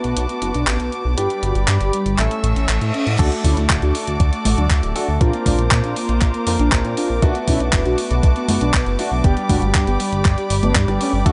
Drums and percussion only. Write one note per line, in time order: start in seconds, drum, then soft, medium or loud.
0.04 closed hi-hat soft
0.17 closed hi-hat medium
0.29 closed hi-hat soft
0.42 closed hi-hat medium
0.54 closed hi-hat soft
0.67 clap loud
0.67 closed hi-hat medium
0.80 closed hi-hat soft
0.92 closed hi-hat soft
1.18 closed hi-hat medium
1.30 closed hi-hat soft
1.43 closed hi-hat medium
1.55 closed hi-hat soft
1.68 clap loud
1.68 closed hi-hat medium
1.81 closed hi-hat soft
1.93 closed hi-hat medium
2.06 closed hi-hat soft
2.18 clap medium
2.18 closed hi-hat medium
2.31 closed hi-hat soft
2.44 closed hi-hat medium
2.56 closed hi-hat soft
2.69 clap loud
2.69 closed hi-hat medium
2.81 closed hi-hat soft
2.94 closed hi-hat soft
3.07 closed hi-hat soft
3.19 kick loud
3.19 closed hi-hat loud
3.19 crash loud
3.32 closed hi-hat soft
3.44 kick medium
3.44 open hi-hat loud
3.57 closed hi-hat soft
3.70 kick loud
3.70 clap loud
3.70 closed hi-hat loud
3.82 closed hi-hat soft
3.95 open hi-hat medium
4.07 closed hi-hat soft
4.20 kick loud
4.20 closed hi-hat loud
4.33 closed hi-hat soft
4.45 open hi-hat loud
4.45 high conga medium
4.58 closed hi-hat soft
4.71 kick loud
4.71 clap loud
4.71 closed hi-hat loud
4.83 closed hi-hat soft
4.96 open hi-hat medium
5.21 kick loud
5.21 closed hi-hat medium
5.33 closed hi-hat soft
5.46 kick medium
5.46 open hi-hat loud
5.46 high conga medium
5.59 closed hi-hat soft
5.71 kick loud
5.71 clap loud
5.71 closed hi-hat loud
5.84 closed hi-hat soft
5.96 open hi-hat medium
6.09 closed hi-hat soft
6.22 kick loud
6.22 clap medium
6.22 closed hi-hat medium
6.34 closed hi-hat soft
6.47 open hi-hat loud
6.59 closed hi-hat soft
6.72 kick loud
6.72 clap loud
6.72 closed hi-hat medium
6.85 closed hi-hat soft
6.97 open hi-hat medium
7.22 kick loud
7.22 closed hi-hat medium
7.35 closed hi-hat soft
7.48 kick medium
7.48 open hi-hat loud
7.60 closed hi-hat soft
7.73 kick loud
7.73 clap loud
7.73 closed hi-hat medium
7.86 closed hi-hat soft
7.98 open hi-hat medium
8.11 closed hi-hat soft
8.23 kick loud
8.23 closed hi-hat medium
8.36 closed hi-hat soft
8.48 open hi-hat loud
8.48 high conga medium
8.61 closed hi-hat soft
8.74 kick loud
8.74 clap loud
8.74 closed hi-hat medium
8.86 closed hi-hat soft
8.99 open hi-hat medium
9.24 kick loud
9.24 closed hi-hat medium
9.37 closed hi-hat soft
9.49 kick medium
9.49 open hi-hat loud
9.49 high conga medium
9.62 closed hi-hat soft
9.75 kick loud
9.75 clap loud
9.75 closed hi-hat medium
9.87 closed hi-hat soft
10.00 open hi-hat medium
10.13 closed hi-hat soft
10.25 kick loud
10.25 clap medium
10.25 closed hi-hat medium
10.38 closed hi-hat soft
10.50 open hi-hat loud
10.63 closed hi-hat soft
10.63 high conga medium
10.75 kick loud
10.75 clap loud
10.75 closed hi-hat medium
10.88 closed hi-hat soft
11.01 open hi-hat medium
11.26 kick loud
11.26 closed hi-hat medium